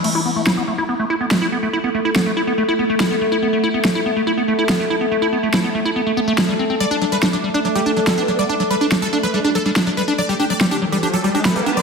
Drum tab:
CC |x-------|--------|--------|--------|
SD |--o---o-|--o---o-|--o---o-|--o---o-|

CC |--------|--------|--------|
SD |--o---o-|--o---o-|--o---o-|